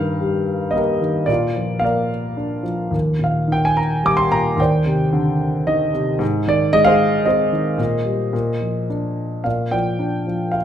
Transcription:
Already playing: G2 D#3 A#4 F5
0.21 G3
0.71 A#3 D#5
0.76 G4 A#4
1.01 D#3
1.26 A#2 D5
1.31 F4 A#4
1.55 F3
1.79 A#3 F5
1.84 A#4 D5
2.37 D4
2.63 F3
2.91 D#2
3.19 A#2
3.24 F5
3.47 D#3
3.52 G5
3.65 G#5
3.77 A#5
4.03 G3 D6
4.17 C6
4.31 A#2 A#5
4.57 D#2 C5 D5 G5
4.85 C3
5.13 D3
5.67 D#3 D#5
5.93 C3
6.19 G#2
6.47 D#3 D5
6.73 G#3 D#5
6.85 G#4 C5 F5
7.25 C4 G#4 C5 D#5
7.52 D#3
7.78 A#2
8.04 G3
8.33 A#2
8.61 F3
8.90 D4
9.44 A#2 D5 F5
9.71 F3 D5 G5
9.99 D4
10.27 F3
10.52 F4 F5

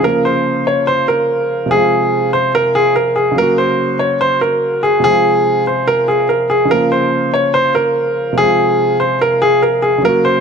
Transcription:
0.00 C#3 F3
0.04 A#3 A#4
0.09 F4
0.25 C5
0.67 C#5
0.87 C5
1.08 A#4
1.66 C3 F3
1.71 G#3 G#4
1.77 F4
2.33 C5
2.55 A#4
2.75 G#4
2.96 A#4
3.16 G#4
3.32 C#3 F#3
3.38 A#3 A#4
3.42 F#4
3.58 C5
3.99 C#5
4.21 C5
4.41 A#4
4.83 G#4
5.00 C3 F3
5.04 G#3 G#4
5.11 F4
5.67 C5
5.87 A#4
6.08 G#4
6.29 A#4
6.50 G#4
6.65 C#3 F3
6.71 A#3 A#4
6.76 F4
6.92 C5
7.34 C#5
7.54 C5
7.75 A#4
8.33 C3 F3
8.38 G#3 G#4
8.44 F4
9.00 C5
9.21 A#4
9.42 G#4
9.62 A#4
9.82 G#4
9.98 C#3 F#3
10.05 A#3 A#4
10.09 F#4
10.25 C5

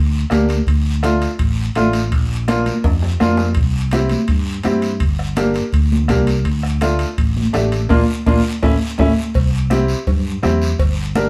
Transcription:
Already playing: D2
0.30 D2 A#3 D4 G4, bombo rim, high conga, high timbale, low timbale, short guiro
0.49 high timbale, short guiro
0.67 D2, bombo low, high conga, high timbale, long guiro
1.03 A3 D4 F4, bombo rim, high conga, high timbale, short guiro
1.22 high timbale, short guiro
1.39 A1, bombo low, high conga, high timbale, long guiro
1.75 A1 A3 D4 F4, bombo rim, high conga, high timbale, short guiro
1.93 high timbale, short guiro
2.12 A#1, bombo low, high conga, high timbale, long guiro
2.48 A#3 D4 F4, bombo rim, high conga, high timbale, short guiro
2.66 high conga, high timbale, short guiro
2.84 F2, bombo low, high conga, high timbale, long guiro
3.02 low timbale
3.20 F2 A#3 D4 F4, bombo rim, high conga, low timbale, short guiro
3.37 low timbale, short guiro
3.55 C2, bombo low, high timbale, long guiro
3.91 C4 E4 G4, bombo rim, high conga, high timbale, short guiro
4.09 high conga, high timbale, short guiro
4.28 G2, bombo low, high conga, high timbale, long guiro
4.63 G2 C4 E4 G4, bombo rim, high conga, high timbale, low timbale, short guiro
4.82 high timbale, short guiro
5.00 G1, bombo low, high conga, high timbale, long guiro
5.19 bombo rim
5.36 A#3 D4 G4, bombo rim, high conga, high timbale, short guiro
5.54 high timbale, short guiro
5.72 D2, bombo low, high conga, high timbale, long guiro
5.92 high conga
6.08 C2 A#3 D4 G4, bombo low, bombo rim, high conga, high timbale, low timbale, short guiro
6.27 high timbale, short guiro
6.45 D2, bombo low, high conga, high timbale, long guiro
6.63 bombo rim
6.81 A3 D4 F4, bombo rim, high conga, high timbale, short guiro
6.99 high timbale, short guiro
7.18 A1, bombo low, high conga, high timbale, long guiro
7.37 high conga
7.53 A1 A3 D4 G4, bombo rim, high conga, high timbale, low timbale, short guiro
7.72 high timbale, short guiro
7.89 A#1 A#3 D4 F4, bombo low, high conga, high timbale, long guiro
8.26 A#1 A#3 D4 F4, bombo low, high conga, high timbale, long guiro
8.63 A1 A3 C#4 E4, bombo low, high conga, high timbale, long guiro
8.98 A1 A3 C#4 E4, bombo low, high conga, high timbale, long guiro
9.34 C2, bombo low, cowbell, high conga, long guiro
9.70 C4 E4 G4, bombo rim, high conga, short guiro
9.88 short guiro
10.07 G2, bombo low, cowbell, high conga, low conga, long guiro
10.43 E2 C4 E4 G4, bombo rim, high conga, low conga, low timbale, short guiro
10.62 short guiro
10.79 G1, bombo low, cowbell, high conga, long guiro
11.15 D4 G4 A#4, bombo rim, high conga, short guiro

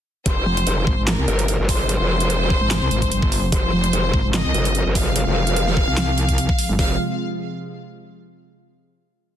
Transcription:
0.26 F1 C3 F3 G#3 F4 C5, kick, closed hi-hat
0.46 F1
0.57 closed hi-hat
0.67 F1, closed hi-hat
0.87 G#1, kick
0.98 G#1
1.07 A#4, snare, clap, closed hi-hat
1.18 C2
1.28 G1, closed hi-hat
1.39 closed hi-hat
1.48 closed hi-hat
1.59 G1
1.69 C5, kick, open hi-hat
1.89 closed hi-hat
2.00 F1
2.20 closed hi-hat
2.30 closed hi-hat
2.50 kick
2.61 G#1
2.71 snare, clap, closed hi-hat
2.82 C2
2.91 G#1, closed hi-hat
3.02 kick, closed hi-hat
3.12 G1, closed hi-hat
3.22 kick
3.32 open hi-hat
3.52 F1 C5, kick, closed hi-hat
3.73 F1
3.84 closed hi-hat
3.93 F1, closed hi-hat
4.14 G#1, kick
4.24 G#1
4.34 D#5, snare, clap, closed hi-hat
4.45 C2
4.54 G1, closed hi-hat
4.65 closed hi-hat
4.75 closed hi-hat
4.86 G1
4.95 F5, kick, open hi-hat
5.16 closed hi-hat
5.27 F1
5.47 closed hi-hat
5.56 closed hi-hat
5.67 snare
5.77 kick
5.88 C2
5.97 snare, clap, closed hi-hat
6.18 closed hi-hat
6.29 kick, closed hi-hat
6.38 closed hi-hat
6.49 kick
6.58 open hi-hat
6.69 G1
6.79 F1 C3 F3 G#3 F4 F5, kick, open hi-hat

